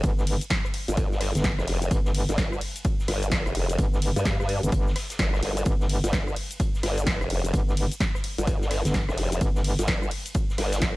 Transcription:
0.04 wobble bass G1, kick, closed hi-hat, ride, shaker
0.18 snare, shaker
0.27 closed hi-hat, open hi-hat, ride
0.41 closed hi-hat, shaker
0.50 kick, snare, closed hi-hat, ride, shaker
0.64 cross-stick, snare, shaker
0.73 closed hi-hat, open hi-hat, ride
0.88 wobble bass G1, closed hi-hat, shaker
0.97 kick, closed hi-hat, ride, shaker
1.12 snare, shaker
1.21 cross-stick, snare, closed hi-hat, open hi-hat, ride
1.35 wobble bass G1, snare, closed hi-hat, shaker
1.44 kick, snare, closed hi-hat, ride, shaker
1.58 wobble bass F1, cross-stick, snare, shaker
1.68 snare, closed hi-hat, open hi-hat, ride
1.82 closed hi-hat, shaker
1.91 wobble bass G1, kick, closed hi-hat, ride, shaker
2.05 snare, shaker
2.14 closed hi-hat, open hi-hat, ride
2.28 wobble bass G1, snare, closed hi-hat, shaker
2.38 kick, snare, closed hi-hat, ride, shaker
2.52 cross-stick, shaker
2.61 open hi-hat, ride
2.76 closed hi-hat, shaker
2.85 kick, closed hi-hat, ride, shaker
3.00 snare, shaker
3.08 wobble bass G1, cross-stick, snare, closed hi-hat, open hi-hat, ride
3.23 closed hi-hat, shaker
3.31 kick, snare, closed hi-hat, ride, shaker
3.46 wobble bass F1, cross-stick, closed hi-hat, shaker
3.55 closed hi-hat, open hi-hat, ride
3.69 closed hi-hat, shaker
3.78 wobble bass G1, kick, closed hi-hat, ride, shaker
3.94 snare, shaker
4.02 closed hi-hat, open hi-hat, ride
4.16 wobble bass G2, closed hi-hat, shaker
4.25 kick, snare, closed hi-hat, ride, shaker
4.40 wobble bass G2, cross-stick, snare, shaker
4.49 closed hi-hat, open hi-hat, ride
4.63 wobble bass G1, closed hi-hat, shaker
4.72 wobble bass G1, kick, closed hi-hat, ride, shaker
4.87 snare, shaker
4.95 cross-stick, snare, closed hi-hat, open hi-hat, ride
5.10 snare, closed hi-hat, shaker
5.19 wobble bass G1, kick, snare, closed hi-hat, ride, shaker
5.34 cross-stick, snare, shaker
5.42 wobble bass G1, snare, closed hi-hat, open hi-hat, ride
5.57 closed hi-hat, shaker
5.65 wobble bass G1, kick, closed hi-hat, ride, shaker
5.80 snare, shaker
5.89 closed hi-hat, open hi-hat, ride
6.04 wobble bass G1, snare, closed hi-hat, shaker
6.13 kick, snare, closed hi-hat, ride, shaker
6.27 cross-stick, shaker
6.36 open hi-hat, ride
6.51 closed hi-hat, shaker
6.60 kick, closed hi-hat, ride, shaker
6.75 snare, shaker
6.83 wobble bass G1, cross-stick, snare, closed hi-hat, open hi-hat, ride
6.98 closed hi-hat, shaker
7.07 kick, snare, closed hi-hat, ride, shaker
7.21 wobble bass F1, cross-stick, closed hi-hat, shaker
7.30 closed hi-hat, open hi-hat, ride
7.45 closed hi-hat, shaker
7.54 wobble bass G1, kick, closed hi-hat, ride, shaker
7.69 snare, shaker
7.77 closed hi-hat, open hi-hat, ride
7.92 closed hi-hat, shaker
8.00 kick, snare, closed hi-hat, ride, shaker
8.15 cross-stick, snare, shaker
8.23 closed hi-hat, open hi-hat, ride
8.38 wobble bass G1, closed hi-hat, shaker
8.47 kick, closed hi-hat, ride, shaker
8.61 snare, shaker
8.70 cross-stick, snare, closed hi-hat, open hi-hat, ride
8.85 wobble bass G1, snare, closed hi-hat, shaker
8.94 kick, snare, closed hi-hat, ride, shaker
9.09 wobble bass F1, cross-stick, snare, shaker
9.17 snare, closed hi-hat, open hi-hat, ride
9.32 closed hi-hat, shaker
9.41 wobble bass G1, kick, closed hi-hat, ride, shaker
9.55 snare, shaker
9.64 closed hi-hat, open hi-hat, ride
9.79 wobble bass G1, snare, closed hi-hat, shaker
9.87 kick, snare, closed hi-hat, ride, shaker
10.02 cross-stick, shaker
10.11 open hi-hat, ride
10.26 closed hi-hat, shaker
10.34 kick, closed hi-hat, ride, shaker
10.50 snare, shaker
10.58 wobble bass G1, cross-stick, snare, closed hi-hat, open hi-hat, ride
10.72 snare, closed hi-hat, shaker
10.82 kick, snare, closed hi-hat, ride, shaker

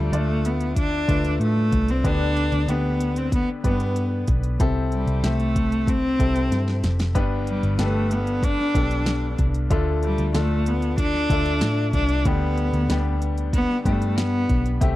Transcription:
Already playing: picked electric bass D2, upright piano D3 A3 D4 F4 A4, cello G3
0.12 picked electric bass D2, upright piano A3 D4 F4 D5, cello A3, closed hi-hat
0.45 cello B3, closed hi-hat
0.61 closed hi-hat
0.76 cello D4, kick, closed hi-hat
1.08 picked electric bass D2, upright piano A3 D4 F4 B4, kick, closed hi-hat
1.25 closed hi-hat
1.40 picked electric bass A2, cello A3, closed hi-hat
1.72 picked electric bass C2, kick, closed hi-hat
1.88 cello C4, closed hi-hat
2.04 picked electric bass D2, upright piano D3 B3 D4 G4 B4, cello D4, kick, closed hi-hat
2.37 closed hi-hat
2.52 picked electric bass D2, closed hi-hat
2.68 picked electric bass D2, upright piano B3 D4 G4 B4, cello B3, closed hi-hat
3.00 closed hi-hat
3.16 cello C4, closed hi-hat
3.32 cello B3, kick, closed hi-hat
3.64 picked electric bass G2, upright piano B3 D4 G4 B4, cello B3, kick, closed hi-hat
3.80 closed hi-hat
3.96 closed hi-hat
4.28 picked electric bass B1, kick, closed hi-hat
4.43 closed hi-hat
4.60 picked electric bass C2, upright piano C3 C4 E4 G4 A4, kick, closed hi-hat
4.92 cello G3, closed hi-hat
5.07 picked electric bass C2, closed hi-hat
5.23 picked electric bass C2, cello A3, upright piano C4 E4 G4 A4, snare, closed hi-hat
5.40 closed hi-hat
5.56 kick, closed hi-hat
5.72 closed hi-hat
5.87 cello C4, kick, closed hi-hat
6.19 picked electric bass C2, upright piano C4 E4 G4 A4, kick, closed hi-hat
6.36 closed hi-hat
6.51 picked electric bass G2, snare, closed hi-hat
6.68 snare
6.84 picked electric bass F1, snare, closed hi-hat
6.99 snare, closed hi-hat
7.15 picked electric bass G1, upright piano G2 B3 D4 G4 B4, kick, closed hi-hat
7.47 cello G3, closed hi-hat
7.63 picked electric bass G1, closed hi-hat
7.78 picked electric bass G1, cello A3, upright piano B3 D4 G4 A4, snare, closed hi-hat
7.86 upright piano B4
8.11 cello B3, closed hi-hat
8.27 closed hi-hat
8.43 cello D4, kick, closed hi-hat
8.59 snare
8.74 picked electric bass B1, upright piano B3 D4 G4 A4, kick, closed hi-hat
8.91 closed hi-hat
9.06 snare, closed hi-hat
9.38 picked electric bass C2, kick, closed hi-hat
9.54 closed hi-hat
9.70 picked electric bass D2, upright piano D3 A3 D4 F4 A4, kick, closed hi-hat
10.03 cello G3, closed hi-hat
10.18 picked electric bass D2, closed hi-hat
10.34 picked electric bass D2, upright piano A3 D4 F4 A4, cello A3, snare, closed hi-hat
10.66 cello B3, closed hi-hat
10.82 closed hi-hat
10.98 cello D4, kick, closed hi-hat
11.14 snare
11.30 picked electric bass D2, upright piano A3 D4 F4 A4, kick, closed hi-hat
11.46 closed hi-hat
11.61 picked electric bass A2, snare, closed hi-hat
11.93 picked electric bass C2, cello D4, kick, closed hi-hat
12.09 closed hi-hat
12.25 picked electric bass D2, upright piano D3 G3 B3 D4 G4, cello B3, kick, closed hi-hat
12.58 closed hi-hat
12.73 picked electric bass D2, closed hi-hat
12.89 picked electric bass D2, upright piano G3 B3 D4 G4, snare, closed hi-hat
13.22 closed hi-hat
13.38 closed hi-hat
13.53 cello B3, kick, closed hi-hat
13.70 snare
13.85 picked electric bass G2, upright piano G3 B3 D4 G4, cello A3, kick, closed hi-hat
14.02 closed hi-hat
14.17 cello B3, snare, closed hi-hat
14.49 picked electric bass B1, kick, closed hi-hat
14.66 closed hi-hat
14.81 picked electric bass C2, upright piano C3 A3 C4 E4 G4, kick, closed hi-hat

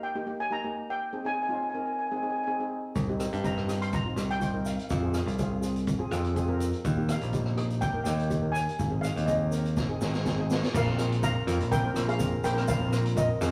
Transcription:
0.03 steel pan G5
0.15 steel pan A#3 D#4 G4
0.26 steel pan A#3 D#4 G4
0.40 steel pan G#5
0.51 steel pan A#3 D#4 G4 A#5
0.64 steel pan A#3 D#4 G4
0.90 steel pan G5
1.13 steel pan C4 D#4 G#4
1.25 steel pan C4 D#4 G#4 G#5
1.34 steel pan G#5
1.42 steel pan G#5
1.46 steel pan C4 D#4 F4 G#5
1.55 steel pan G#5
1.62 steel pan G#5
1.69 steel pan G#5
1.74 steel pan C4 D#4 A#4 G#5
1.85 steel pan G#5
1.92 steel pan G#5
1.99 steel pan G#5
2.07 steel pan G#5
2.11 steel pan C4 D#4 G#4
2.16 steel pan G#5
2.23 steel pan C4 D#4 G#4 G#5
2.30 steel pan G#5
2.36 steel pan G#5
2.43 steel pan C4 D#4 G#4 G#5
2.51 steel pan G#5
2.60 steel pan C4 D#4 G#4
2.95 picked electric bass C2, kick, closed hi-hat, shaker
3.09 steel pan C4 D#4 G4
3.19 steel pan C4 D#4 G4, cross-stick, closed hi-hat, shaker
3.33 picked electric bass G2, closed hi-hat
3.43 steel pan C4 D#4 G4 A#5, kick, closed hi-hat, shaker
3.57 cross-stick
3.67 steel pan C4 D#4 G4, cross-stick, closed hi-hat, shaker
3.82 steel pan C6, closed hi-hat, shaker
3.93 steel pan A#5, kick, closed hi-hat, shaker
4.06 steel pan C4 D#4 F4
4.16 picked electric bass C2, steel pan C4 D#4 G4, cross-stick, closed hi-hat, shaker
4.31 steel pan G5, closed hi-hat
4.39 steel pan C4 D#4 F4, kick, closed hi-hat, shaker
4.54 steel pan C4 D#4 A#4
4.65 steel pan F5, closed hi-hat, shaker
4.74 steel pan F5
4.79 steel pan F5, closed hi-hat
4.89 picked electric bass F2, steel pan F5, kick, closed hi-hat, shaker
4.97 steel pan F5
5.02 steel pan C4 F4 G#4 F5
5.12 steel pan C4 F4 G#4 F5, cross-stick, closed hi-hat, shaker
5.19 steel pan F5
5.26 picked electric bass C2, steel pan F5, closed hi-hat, shaker
5.35 steel pan C4 F4 G#4 F5, shaker
5.39 kick, closed hi-hat
5.43 steel pan F5
5.53 steel pan F5
5.61 steel pan C4 F4 G#4, closed hi-hat, shaker
5.76 closed hi-hat, shaker
5.87 kick, closed hi-hat, shaker
5.99 steel pan C4 F4 G#4
6.11 picked electric bass F2, steel pan C4 F4 G#4, cross-stick, closed hi-hat, shaker
6.24 closed hi-hat
6.35 steel pan C4 F4 G#4, kick, closed hi-hat, shaker
6.48 steel pan C4 F4 A#4
6.60 closed hi-hat, shaker
6.73 closed hi-hat
6.84 picked electric bass D#2, kick, closed hi-hat, shaker
6.97 steel pan A#3 D#4 G4
7.09 steel pan A#3 D#4 G4 F5, cross-stick, closed hi-hat, shaker
7.21 picked electric bass A#1, closed hi-hat, shaker
7.33 steel pan A#3 D#4 G4, kick, closed hi-hat, shaker
7.46 cross-stick
7.57 steel pan A#3 D#4 G4, cross-stick, closed hi-hat
7.70 closed hi-hat, shaker
7.81 steel pan G5, kick, closed hi-hat, shaker
7.93 steel pan A#3 D#4 A#4
8.04 picked electric bass D#2, steel pan A#3 D#4 G4 G5, cross-stick, closed hi-hat, shaker
8.19 closed hi-hat
8.30 steel pan A#3 D#4 G4, kick, closed hi-hat, shaker
8.42 steel pan A#3 D#4 A#4
8.52 steel pan G#5, shaker
8.56 closed hi-hat
8.69 closed hi-hat
8.79 picked electric bass G#1, kick, closed hi-hat, shaker
8.91 steel pan C4 D#4 G#4
9.01 steel pan C4 D#4 G#4 F5, cross-stick, closed hi-hat, shaker
9.16 picked electric bass D#2, closed hi-hat, shaker
9.26 steel pan C4 D#4 G#4 D#5, kick, closed hi-hat, shaker
9.51 steel pan C4 D#4 A#4, closed hi-hat, shaker
9.65 closed hi-hat, shaker
9.77 kick, snare, shaker
9.89 steel pan C4 D#4 G#4
10.01 picked electric bass G#1, steel pan C4 D#4 G#4, snare, shaker
10.14 snare, shaker
10.25 steel pan C4 D#4 G#4, kick, snare, shaker
10.38 steel pan C4 D#4 G#4
10.50 snare, shaker
10.63 snare, shaker
10.74 picked electric bass A#1, steel pan A#4 F5, kick, crash, shaker
10.87 steel pan C4 F4 A#4
10.98 steel pan C4 F4 G#4, cross-stick, closed hi-hat, shaker
11.12 closed hi-hat
11.22 steel pan C4 F4 A#4 F5 A#5, kick, closed hi-hat, shaker
11.47 picked electric bass F2, steel pan C4 F4 A#4, closed hi-hat, shaker
11.60 picked electric bass A#1, closed hi-hat
11.71 steel pan A#4 G5, kick, closed hi-hat, shaker
11.83 steel pan C4 F4 A#4
11.94 picked electric bass A#1, steel pan C4 F4 A#4, cross-stick, closed hi-hat, shaker
12.08 steel pan G#4 F5, closed hi-hat
12.19 steel pan C4 F4 A#4, kick, closed hi-hat, shaker
12.44 picked electric bass A#1, steel pan A#4 G5, closed hi-hat, shaker
12.55 steel pan C4 F4 A#4, cross-stick, closed hi-hat
12.68 picked electric bass A#1, steel pan A#4 F5, kick, closed hi-hat, shaker
12.80 steel pan C4 F4 A#4
12.90 steel pan C4 F4 A#4, cross-stick, closed hi-hat, shaker
13.06 closed hi-hat
13.16 steel pan C4 F4 A#4 D#5, kick, closed hi-hat, shaker
13.41 picked electric bass F2, steel pan C4 F4 G#4 A#4 F5, cross-stick, closed hi-hat, shaker

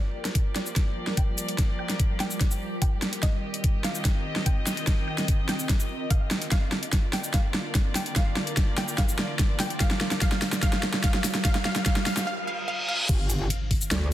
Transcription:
Already playing: string section F3 A#3 G4 D5, ambient pad G3 F4 A#4 D5, synth pluck D5, riser
0.25 snare, closed hi-hat
0.35 kick, closed hi-hat
0.56 synth pluck D5, snare, closed hi-hat
0.66 shaker
0.76 kick, snare, closed hi-hat
1.07 snare
1.17 synth pluck G5, kick, closed hi-hat
1.38 closed hi-hat, shaker
1.48 closed hi-hat
1.58 kick, snare, closed hi-hat
1.79 synth pluck G5
1.90 snare, closed hi-hat
2.00 kick, closed hi-hat
2.20 synth pluck G5, snare, closed hi-hat
2.31 shaker
2.41 kick, snare, closed hi-hat
2.51 shaker
2.82 synth pluck G5, kick, closed hi-hat
3.02 snare, closed hi-hat
3.13 closed hi-hat
3.23 string section D#3 C4 D#5, ambient pad C4, synth pluck D#5, kick, snare, closed hi-hat
3.54 closed hi-hat
3.64 kick, closed hi-hat
3.84 synth pluck F5, snare, closed hi-hat
3.95 shaker
4.03 ambient pad D#5, kick, snare, closed hi-hat
4.36 snare
4.46 synth pluck G5, kick, closed hi-hat
4.67 snare, closed hi-hat, shaker
4.77 closed hi-hat
4.87 kick, snare, closed hi-hat
5.08 synth pluck G5
5.18 snare, closed hi-hat
5.28 kick, closed hi-hat
5.49 synth pluck G5, snare, closed hi-hat
5.59 shaker
5.69 kick, snare, closed hi-hat
5.80 shaker
6.10 synth pluck F5, kick, closed hi-hat
6.31 snare, closed hi-hat
6.42 closed hi-hat
6.52 string section D3 A#3 F4 D5, ambient pad F4, synth pluck F5, kick, snare, closed hi-hat
6.59 ambient pad A#4
6.72 snare
6.83 closed hi-hat
6.91 ambient pad D5, kick, snare, closed hi-hat
7.13 synth pluck G5, snare, open hi-hat
7.24 shaker
7.34 synth pluck F5, kick, snare, closed hi-hat
7.54 snare
7.75 kick, snare, closed hi-hat
7.95 synth pluck G5, snare, open hi-hat, shaker
8.06 closed hi-hat
8.16 synth pluck F5, kick, snare, closed hi-hat
8.37 snare
8.47 closed hi-hat
8.57 kick, snare, closed hi-hat
8.78 synth pluck G5, snare, open hi-hat
8.88 shaker
8.98 synth pluck F5, kick, snare, closed hi-hat
9.09 shaker
9.19 snare
9.39 kick, snare, closed hi-hat
9.60 synth pluck G5, snare, open hi-hat
9.70 closed hi-hat
9.80 synth pluck F5, kick, snare, closed hi-hat
9.91 snare
10.01 snare
10.11 snare, closed hi-hat
10.21 synth pluck F5, kick, snare, closed hi-hat
10.32 snare
10.42 snare, open hi-hat
10.53 snare, shaker
10.63 ambient pad C5, synth pluck F5, kick, snare, closed hi-hat
10.73 snare
10.83 snare
10.94 snare
11.04 synth pluck F5, kick, snare, closed hi-hat
11.14 snare
11.24 snare, open hi-hat, shaker
11.35 snare, closed hi-hat
11.45 synth pluck F5, kick, snare, closed hi-hat
11.55 snare
11.65 synth pluck F5, snare
11.76 snare, closed hi-hat
11.86 synth pluck F5, kick, snare, closed hi-hat
11.96 snare
12.06 synth pluck F5, snare, open hi-hat
12.17 snare, shaker
12.27 synth pluck F5, reverse cymbal
12.47 synth pluck F5
12.68 synth pluck F5
12.88 synth pluck F5
13.09 wobble bass G1, ambient pad D4, kick, closed hi-hat, crash, impact
13.30 closed hi-hat, shaker
13.37 ambient pad D5
13.50 closed hi-hat
13.61 ambient pad G4
13.71 kick, open hi-hat
13.81 shaker
13.91 wobble bass D2, snare, closed hi-hat

